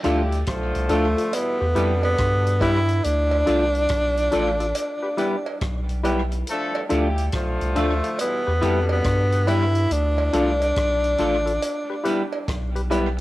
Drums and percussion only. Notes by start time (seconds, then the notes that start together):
0.04 closed hi-hat
0.32 closed hi-hat
0.47 kick, cross-stick, closed hi-hat
0.75 closed hi-hat
0.89 closed hi-hat
1.18 closed hi-hat
1.33 closed hi-hat, cowbell
1.76 closed hi-hat
2.03 cowbell
2.18 kick, cross-stick, closed hi-hat
2.47 closed hi-hat
2.61 kick, closed hi-hat, cowbell
2.88 closed hi-hat
3.04 closed hi-hat
3.31 cowbell
3.47 closed hi-hat
3.75 closed hi-hat
3.89 kick, cross-stick, closed hi-hat
4.17 closed hi-hat
4.32 closed hi-hat
4.60 closed hi-hat
4.75 closed hi-hat, cowbell
5.18 closed hi-hat
5.46 cowbell
5.61 kick, cross-stick, closed hi-hat
5.89 closed hi-hat
6.05 closed hi-hat, cowbell
6.32 closed hi-hat
6.47 closed hi-hat
6.75 cowbell
6.90 closed hi-hat
7.18 closed hi-hat
7.32 kick, cross-stick, closed hi-hat
7.61 closed hi-hat
7.76 closed hi-hat
8.04 closed hi-hat
8.19 closed hi-hat, cowbell
8.62 closed hi-hat
8.89 cowbell
9.04 kick, cross-stick, closed hi-hat
9.32 closed hi-hat
9.47 closed hi-hat, cowbell
9.75 closed hi-hat
9.91 closed hi-hat
10.18 cowbell
10.33 closed hi-hat
10.61 closed hi-hat, cowbell
10.76 kick, cross-stick, closed hi-hat
11.04 closed hi-hat
11.18 closed hi-hat
11.47 closed hi-hat
11.62 closed hi-hat, cowbell
12.05 closed hi-hat
12.33 cowbell
12.48 kick, cross-stick, closed hi-hat
12.76 closed hi-hat
12.91 closed hi-hat, cowbell